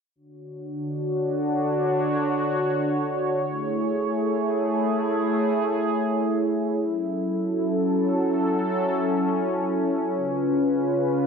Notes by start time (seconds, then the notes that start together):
0.15 D3 D4 F#4 C#5
3.49 A3 E4 G#4
6.82 F#3 C#4 A4
10.15 C#3 F4 B4